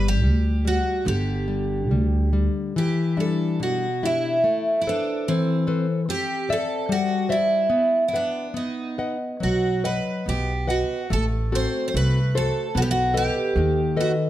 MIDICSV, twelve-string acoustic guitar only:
0, 0, Header, 1, 2, 480
1, 0, Start_track
1, 0, Key_signature, 1, "minor"
1, 0, Tempo, 807537
1, 629, Time_signature, 2, 2, 24, 8
1, 629, Tempo, 848656
1, 2549, Tempo, 813008
1, 4469, Tempo, 846262
1, 6869, Tempo, 814111
1, 8261, End_track
2, 0, Start_track
2, 0, Title_t, "Twelve-string acoustic guitar"
2, 0, Program_c, 0, 25
2, 50, Note_on_c, 0, 67, 95
2, 399, Note_off_c, 0, 67, 0
2, 401, Note_on_c, 0, 66, 79
2, 639, Note_off_c, 0, 66, 0
2, 642, Note_on_c, 0, 67, 75
2, 1337, Note_off_c, 0, 67, 0
2, 1603, Note_on_c, 0, 67, 70
2, 1840, Note_off_c, 0, 67, 0
2, 1842, Note_on_c, 0, 69, 65
2, 2080, Note_off_c, 0, 69, 0
2, 2082, Note_on_c, 0, 66, 67
2, 2322, Note_off_c, 0, 66, 0
2, 2324, Note_on_c, 0, 64, 75
2, 2756, Note_off_c, 0, 64, 0
2, 2763, Note_on_c, 0, 64, 59
2, 2799, Note_off_c, 0, 64, 0
2, 2808, Note_on_c, 0, 62, 74
2, 3038, Note_on_c, 0, 60, 70
2, 3049, Note_off_c, 0, 62, 0
2, 3374, Note_off_c, 0, 60, 0
2, 3521, Note_on_c, 0, 67, 101
2, 3766, Note_off_c, 0, 67, 0
2, 3773, Note_on_c, 0, 69, 84
2, 4003, Note_off_c, 0, 69, 0
2, 4005, Note_on_c, 0, 66, 81
2, 4240, Note_off_c, 0, 66, 0
2, 4242, Note_on_c, 0, 64, 75
2, 4653, Note_off_c, 0, 64, 0
2, 4684, Note_on_c, 0, 64, 59
2, 4716, Note_off_c, 0, 64, 0
2, 4725, Note_on_c, 0, 62, 74
2, 4955, Note_off_c, 0, 62, 0
2, 4957, Note_on_c, 0, 63, 61
2, 5292, Note_off_c, 0, 63, 0
2, 5449, Note_on_c, 0, 66, 70
2, 5684, Note_off_c, 0, 66, 0
2, 5686, Note_on_c, 0, 71, 75
2, 5931, Note_off_c, 0, 71, 0
2, 5934, Note_on_c, 0, 67, 78
2, 6166, Note_off_c, 0, 67, 0
2, 6168, Note_on_c, 0, 66, 75
2, 6408, Note_off_c, 0, 66, 0
2, 6411, Note_on_c, 0, 69, 87
2, 6473, Note_off_c, 0, 69, 0
2, 6651, Note_on_c, 0, 72, 88
2, 6829, Note_off_c, 0, 72, 0
2, 6836, Note_on_c, 0, 72, 66
2, 6873, Note_off_c, 0, 72, 0
2, 6887, Note_on_c, 0, 71, 91
2, 7125, Note_off_c, 0, 71, 0
2, 7127, Note_on_c, 0, 69, 89
2, 7363, Note_on_c, 0, 66, 88
2, 7364, Note_off_c, 0, 69, 0
2, 7389, Note_off_c, 0, 66, 0
2, 7391, Note_on_c, 0, 67, 82
2, 7429, Note_off_c, 0, 67, 0
2, 7443, Note_on_c, 0, 66, 97
2, 7596, Note_off_c, 0, 66, 0
2, 7598, Note_on_c, 0, 67, 96
2, 8086, Note_off_c, 0, 67, 0
2, 8089, Note_on_c, 0, 66, 82
2, 8151, Note_off_c, 0, 66, 0
2, 8261, End_track
0, 0, End_of_file